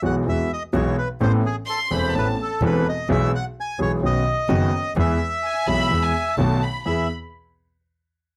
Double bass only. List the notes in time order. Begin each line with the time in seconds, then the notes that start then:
0.03 B1
0.26 E2
0.74 B1
1.21 A1
1.92 E1
2.15 A1
2.61 E1
3.08 B1
3.79 B1
4.03 B1
4.49 F#1
4.95 E2
5.67 B1
5.91 E2
6.37 B1
6.86 E2